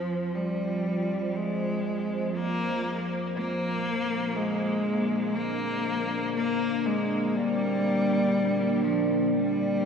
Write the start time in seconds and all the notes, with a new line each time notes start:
Already playing: F3 F4 C5
0.35 G3
1.36 G#3
2.36 A#3
3.33 A#3
3.73 D4
4.36 G#3
5.35 A#3
6.36 A#3
6.85 G#3
7.36 G3
8.84 F3
9.34 G3